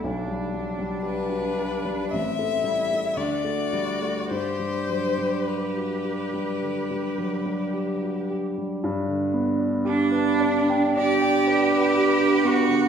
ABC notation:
X:1
M:4/4
L:1/16
Q:1/4=55
K:G
V:1 name="Violin"
z4 B4 e4 d4 | c4 B8- B2 z2 | z8 d2 B6 |]
V:2 name="Cello"
D8 C2 E2 F4 | G12- G2 z2 | z4 D4 G6 F2 |]
V:3 name="Grand piano"
B,,, G, F, G, G F G G, A,,, A, G, A, D,, A, G, A, | G,, G, F, G, G F G G, D, G, F, G, G F G G, | G,, D, B, D G B d g d g d B G D B, D, |]